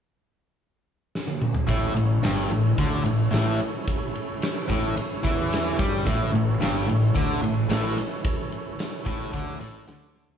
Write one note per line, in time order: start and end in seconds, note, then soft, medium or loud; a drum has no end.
1.15 snare medium
1.27 high tom medium
1.42 mid tom loud
1.54 floor tom medium
1.67 1.94 A1 medium
1.67 1.94 A2 loud
1.67 6.03 C#4 medium
1.67 6.03 E4 medium
1.67 6.03 A4 medium
1.67 6.03 C#5 medium
1.67 kick loud
1.67 ride medium
1.95 2.22 A1 medium
1.95 2.17 A2 medium
1.95 ride medium
2.23 2.49 G1 medium
2.23 2.50 G2 medium
2.23 snare loud
2.23 ride loud
2.50 2.77 A1 medium
2.50 2.72 A2 medium
2.50 ride medium
2.78 3.03 D2 medium
2.78 3.04 D3 medium
2.78 kick loud
2.78 ride loud
3.05 3.31 A1 medium
3.05 3.27 A2 medium
3.05 ride medium
3.31 3.59 A1 loud
3.31 3.58 A2 loud
3.31 snare loud
3.31 ride medium
3.60 ride medium
3.88 kick loud
3.88 ride medium
4.15 ride medium
4.42 snare loud
4.42 ride loud
4.68 4.95 A1 medium
4.68 4.95 A2 medium
4.68 kick medium
4.68 ride medium
4.96 muted distorted electric guitar stroke medium
4.96 muted fingered electric bass stroke soft
4.96 ride loud
5.23 5.75 E2 medium
5.23 5.77 E3 loud
5.23 kick loud
5.23 ride medium
5.53 snare loud
5.53 ride medium
5.77 6.05 G2 medium
5.77 6.05 G3 loud
5.77 kick loud
5.77 ride medium
6.05 6.32 A1 medium
6.05 6.31 A2 loud
6.05 10.38 C#4 medium
6.05 10.38 E4 medium
6.05 10.38 A4 medium
6.05 10.38 C#5 medium
6.05 kick loud
6.05 ride medium
6.32 6.59 A1 medium
6.32 6.55 A2 medium
6.32 ride medium
6.60 6.86 G1 medium
6.60 6.87 G2 loud
6.60 snare loud
6.60 ride loud
6.87 7.13 A1 medium
6.87 7.09 A2 medium
6.87 ride medium
7.15 7.41 D2 medium
7.15 7.42 D3 medium
7.15 kick loud
7.15 ride loud
7.42 7.68 A1 medium
7.42 7.64 A2 medium
7.42 ride medium
7.69 7.95 A1 loud
7.69 7.96 A2 loud
7.69 snare loud
7.69 ride medium
7.98 ride medium
8.25 kick loud
8.25 ride loud
8.52 ride medium
8.79 snare loud
8.79 ride loud
9.05 9.32 A1 medium
9.05 9.32 A2 loud
9.05 kick loud
9.05 ride medium
9.33 9.59 D2 medium
9.33 9.59 D3 loud
9.33 kick loud
9.33 ride medium
9.60 9.86 A1 medium
9.60 9.87 A2 loud
9.60 ride medium
9.87 10.38 D2 loud
9.87 10.38 D3 loud
9.87 snare loud
9.87 ride medium
10.16 snare medium
10.28 floor tom medium